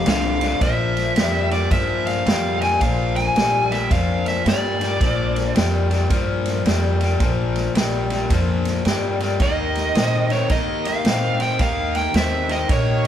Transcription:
0.06 0.55 C2 loud
0.06 0.38 F2 loud
0.06 0.38 D3 loud
0.06 0.61 F5 loud
0.06 snare loud
0.06 ride medium
0.41 0.59 F2 medium
0.41 0.59 D3 loud
0.41 snare soft
0.41 ride medium
0.61 1.10 A#1 medium
0.61 1.12 A#2 medium
0.61 1.12 F3 medium
0.61 1.48 E5 medium
0.61 kick loud
0.61 snare soft
0.61 ride medium
0.97 snare soft
0.97 ride soft
1.16 1.65 F2 medium
1.16 1.48 A#2 medium
1.16 1.48 G3 medium
1.16 snare loud
1.16 ride medium
1.51 1.69 A#2 medium
1.51 1.69 G3 medium
1.51 1.70 D5 medium
1.51 snare soft
1.51 ride medium
1.71 2.20 G2 medium
1.71 2.22 A#2 medium
1.71 2.22 F3 medium
1.71 2.07 E5 medium
1.71 kick loud
1.71 snare soft
1.71 ride medium
2.07 2.58 F5 medium
2.07 snare soft
2.07 ride medium
2.26 2.75 F2 medium
2.26 2.58 A#2 medium
2.26 2.58 G3 medium
2.26 snare loud
2.26 ride medium
2.60 2.79 A#2 medium
2.60 2.79 G3 medium
2.60 2.80 G#5 loud
2.60 snare soft
2.60 ride medium
2.81 3.30 A#1 medium
2.81 3.32 A#2 medium
2.81 3.32 F3 medium
2.81 3.16 F5 medium
2.81 kick loud
2.81 snare soft
2.81 ride medium
3.16 3.73 G#5 loud
3.16 snare soft
3.16 ride medium
3.35 3.84 A#1 medium
3.35 3.67 A#2 medium
3.35 3.68 G3 loud
3.35 snare loud
3.35 ride medium
3.71 3.89 A#2 medium
3.71 3.89 G3 medium
3.71 3.90 E5 medium
3.71 snare soft
3.71 ride medium
3.90 4.40 F2 medium
3.90 4.42 A#2 medium
3.90 4.42 F3 medium
3.90 4.24 F5 medium
3.90 kick loud
3.90 snare soft
3.90 ride medium
4.26 4.48 E5 medium
4.26 snare soft
4.26 ride medium
4.45 4.94 G2 medium
4.45 4.77 A#2 medium
4.45 4.77 G3 loud
4.45 5.53 D5 medium
4.45 snare loud
4.45 ride medium
4.80 4.99 A#2 medium
4.80 4.99 G3 medium
4.80 snare soft
4.80 ride medium
5.00 5.50 A#1 medium
5.00 5.51 A#2 medium
5.00 5.52 F3 medium
5.00 kick loud
5.00 snare soft
5.00 ride medium
5.36 snare soft
5.36 ride medium
5.55 6.04 F2 medium
5.55 5.87 A#2 medium
5.55 5.87 G3 medium
5.55 snare loud
5.55 ride medium
5.90 6.08 A#2 medium
5.90 6.09 G3 medium
5.90 snare soft
5.90 ride medium
6.10 6.59 G2 medium
6.10 6.61 A#2 medium
6.10 6.62 F3 medium
6.10 kick loud
6.10 snare soft
6.10 ride medium
6.46 snare soft
6.46 ride medium
6.65 7.14 F2 medium
6.65 6.97 A#2 medium
6.65 6.97 G3 medium
6.65 snare medium
6.65 ride medium
7.00 7.18 A#2 medium
7.00 7.19 G3 medium
7.00 snare soft
7.00 ride medium
7.20 7.69 A#1 medium
7.20 7.71 A#2 medium
7.20 7.72 F3 medium
7.20 kick loud
7.20 snare soft
7.20 ride medium
7.56 snare soft
7.56 ride medium
7.74 8.24 A#1 medium
7.74 8.07 A#2 medium
7.74 8.07 G3 medium
7.74 snare loud
7.74 ride medium
8.10 8.28 A#2 medium
8.10 8.29 G3 medium
8.10 snare soft
8.10 ride medium
8.30 8.79 F2 medium
8.30 8.81 A#2 medium
8.30 8.82 F3 medium
8.30 kick medium
8.30 snare soft
8.30 ride medium
8.65 snare soft
8.65 ride medium
8.85 9.34 G2 medium
8.85 9.17 A#2 medium
8.85 9.17 G3 medium
8.85 snare medium
8.85 ride medium
9.20 9.38 A#2 medium
9.20 9.39 G3 medium
9.20 snare soft
9.20 ride medium
9.40 9.89 D#2 medium
9.40 9.91 D#3 medium
9.40 9.91 A#3 medium
9.40 10.34 D#5 medium
9.40 kick loud
9.40 snare soft
9.40 ride medium
9.75 snare soft
9.75 ride medium
9.95 10.44 A#2 medium
9.95 10.27 D#3 medium
9.95 10.27 C4 medium
9.95 snare loud
9.95 ride medium
10.30 10.48 D#3 medium
10.30 10.48 C4 medium
10.30 10.49 C#5 medium
10.30 snare soft
10.30 ride medium
10.49 10.99 C3 medium
10.49 11.01 D#3 medium
10.49 11.01 A#3 medium
10.49 10.83 D#5 medium
10.49 kick loud
10.49 snare soft
10.49 ride medium
10.85 11.41 F5 medium
10.85 snare soft
10.85 ride medium
11.05 11.53 A#2 medium
11.05 11.37 D#3 medium
11.05 11.37 C4 medium
11.05 snare loud
11.05 ride medium
11.40 11.58 D#3 medium
11.40 11.58 C4 medium
11.40 11.59 G5 medium
11.40 snare soft
11.40 ride medium
11.59 12.08 D#2 medium
11.59 12.11 D#3 medium
11.59 12.11 A#3 loud
11.59 11.96 F5 loud
11.59 kick loud
11.59 snare soft
11.59 ride medium
11.95 12.14 G5 medium
11.95 snare soft
11.95 ride medium
12.14 12.63 D#2 medium
12.14 12.46 D#3 medium
12.14 12.46 C4 medium
12.14 12.52 E5 medium
12.14 snare loud
12.14 ride medium
12.49 12.67 D#3 medium
12.49 12.68 C4 medium
12.49 12.71 D#5 medium
12.49 snare soft
12.49 ride medium
12.69 13.07 A#2 medium
12.69 13.07 D#3 medium
12.69 13.07 A#3 medium
12.69 13.03 C#5 medium
12.69 kick loud
12.69 snare soft
12.69 ride medium

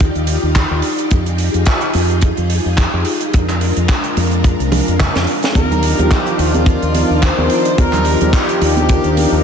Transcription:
0.00 3.30 D#4 medium
0.00 1.07 F4 medium
0.00 3.30 G4 medium
0.00 1.08 D5 medium
0.00 kick loud
0.00 closed hi-hat medium
0.15 0.36 D#2 medium
0.15 closed hi-hat soft
0.27 open hi-hat loud
0.43 0.63 D#2 medium
0.55 kick loud
0.55 clap loud
0.55 closed hi-hat medium
0.71 0.80 D#2 medium
0.82 open hi-hat medium
0.99 closed hi-hat medium
1.11 1.48 F2 medium
1.11 3.32 F4 medium
1.11 3.32 G#4 medium
1.11 kick loud
1.11 closed hi-hat medium
1.26 closed hi-hat medium
1.38 open hi-hat loud
1.54 1.64 F2 medium
1.54 closed hi-hat medium
1.65 kick loud
1.65 clap loud
1.65 closed hi-hat medium
1.81 closed hi-hat medium
1.93 2.32 F2 medium
1.93 open hi-hat medium
2.10 closed hi-hat medium
2.21 kick loud
2.21 closed hi-hat medium
2.37 2.58 F2 medium
2.37 closed hi-hat medium
2.50 open hi-hat loud
2.65 2.86 F2 medium
2.78 kick loud
2.78 clap loud
2.78 closed hi-hat medium
2.93 3.03 F2 medium
3.05 open hi-hat medium
3.21 closed hi-hat medium
3.33 3.71 F2 medium
3.33 5.53 G#3 medium
3.33 5.54 D4 medium
3.33 9.44 F4 medium
3.33 5.53 A#4 medium
3.33 kick loud
3.33 closed hi-hat medium
3.49 clap soft
3.49 closed hi-hat medium
3.61 open hi-hat medium
3.76 3.86 F2 medium
3.76 closed hi-hat medium
3.88 kick loud
3.88 clap loud
3.88 closed hi-hat medium
4.04 closed hi-hat soft
4.17 4.54 F2 medium
4.17 open hi-hat loud
4.31 closed hi-hat soft
4.44 kick loud
4.44 closed hi-hat medium
4.60 4.80 C2 medium
4.60 closed hi-hat medium
4.72 open hi-hat medium
4.72 high tom medium
4.88 5.08 F2 medium
4.88 closed hi-hat medium
5.00 kick loud
5.00 clap loud
5.00 closed hi-hat medium
5.00 mid tom medium
5.15 5.25 F2 medium
5.15 snare medium
5.15 closed hi-hat soft
5.27 open hi-hat medium
5.43 snare medium
5.43 closed hi-hat medium
5.55 5.93 D#2 medium
5.55 9.44 D#3 medium
5.55 6.36 F3 medium
5.55 6.36 D4 medium
5.55 6.36 D#4 medium
5.55 6.37 G4 loud
5.55 6.07 A#4 loud
5.55 9.44 D5 medium
5.55 kick loud
5.55 closed hi-hat medium
5.55 high conga medium
5.71 closed hi-hat medium
5.71 low conga medium
5.83 open hi-hat loud
5.99 6.08 D#2 medium
5.99 closed hi-hat medium
5.99 high conga medium
5.99 low conga medium
6.11 6.39 G4 medium
6.11 kick loud
6.11 clap loud
6.11 closed hi-hat medium
6.27 closed hi-hat medium
6.38 6.76 D#2 medium
6.38 7.74 F3 medium
6.38 7.75 D4 medium
6.38 7.75 D#4 medium
6.38 7.23 F4 medium
6.38 7.76 A#4 medium
6.38 open hi-hat loud
6.54 closed hi-hat medium
6.54 high conga medium
6.66 kick loud
6.66 closed hi-hat medium
6.82 7.02 D#2 medium
6.82 closed hi-hat medium
6.95 open hi-hat loud
6.95 high conga medium
7.10 7.30 D#2 medium
7.22 7.78 C5 medium
7.22 kick loud
7.22 clap loud
7.22 closed hi-hat medium
7.38 7.47 D#2 medium
7.38 high conga medium
7.50 open hi-hat medium
7.65 closed hi-hat medium
7.76 8.15 D#2 medium
7.76 8.57 F3 medium
7.76 8.58 D4 medium
7.76 8.58 D#4 medium
7.76 8.58 G4 loud
7.76 8.30 A#4 loud
7.76 kick loud
7.76 closed hi-hat medium
7.76 high conga medium
7.93 clap soft
7.93 closed hi-hat medium
7.93 low conga medium
8.05 open hi-hat loud
8.21 8.30 D#2 medium
8.21 closed hi-hat medium
8.21 high conga medium
8.21 low conga medium
8.33 8.61 G4 medium
8.33 kick loud
8.33 clap loud
8.33 closed hi-hat medium
8.49 closed hi-hat medium
8.60 8.98 D#2 medium
8.60 9.44 F3 medium
8.60 9.44 D4 medium
8.60 9.44 D#4 medium
8.60 9.41 G4 medium
8.60 9.44 A#4 medium
8.60 open hi-hat loud
8.77 closed hi-hat soft
8.77 high conga medium
8.89 kick loud
8.89 closed hi-hat medium
9.04 9.25 D#2 medium
9.04 closed hi-hat medium
9.17 open hi-hat loud
9.17 high conga medium
9.32 9.44 D#2 medium

